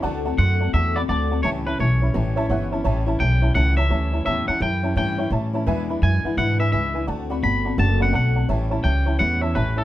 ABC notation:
X:1
M:4/4
L:1/8
Q:"Swing" 1/4=170
K:Amix
V:1 name="Clean electric guitar"
z2 f2 e d d2 | c B c4- c z | z2 g2 f e3 | e f g2 g2 z2 |
z2 ^g2 f e e2 | z2 b2 a f f2 | z2 g2 f e B A |]
V:2 name="Honky-tonk piano"
[dfa] [dfa] [df=c'] [dfa] [dfa] [dfb] [dfa] [dfa] | [cea] [cea] [cea] [ceb] [cea] [cea] [cef] [cea] | [cea] [cea] [cea] [cea] [cea] [cea] [cea] [cea] | [cea] [cea] [cea] [cea] [cea] [ceg] [cea] [cea] |
[Be^g] [Beb] [Beg] [Bef] [Beb] [Beg] [Beg] [Beg] | [dfa] [dfb] [dfa] [dfa] [dfa] [dfb] [dfa] [dfa] | [cea] [cea] [cea] [cea] [ceb] [cea] [cea] [cea] |]
V:3 name="Steel-string acoustic guitar"
[D,A,=CF] [A,CF] [D,A,CF] [A,CF] [D,A,CF] [A,CF] [D,A,CF] [A,CF] | [A,,E,G,CE] [G,CE] [E,G,CE] [G,CE] [A,,E,G,CE] [G,CE] [E,G,CE] [G,CE] | [A,,E,G,CE] [G,CE] [E,G,CE] [G,CE] [A,,E,G,CE] [G,CE] [E,G,CE] [G,CE] | [A,,E,G,CE] [G,CE] [E,G,CE] [G,CE] [A,,E,G,CE] [G,CE] [E,G,CE] [G,CE] |
[E,,B,,E,^G,DE] [E,G,DE] [E,G,DE] [E,G,DE] [E,,B,,E,G,DE] [E,G,DE] [E,G,DE] [E,G,DE] | [D,A,=CF] [A,CF] [D,A,CF] [A,CF] [D,A,CF] [A,CF] [D,A,CF] [A,CF] | [A,,E,G,CE] [G,CE] [E,G,CE] [G,CE] [A,,E,G,CE] [G,CE] [E,G,CE] [G,CE] |]
V:4 name="Upright bass" clef=bass
D,,2 F,,2 E,,2 D,,2 | C,,2 B,,,2 A,,,2 G,,,2 | A,,,2 B,,,2 C,,2 D,,2 | E,, z F,,2 G,,2 A,,2 |
E,,2 F,, z ^G,,2 C,,2 | D,,2 G,,,2 F,,,2 B,,,2 | A,,,2 C,,2 E,,2 A,,,2 |]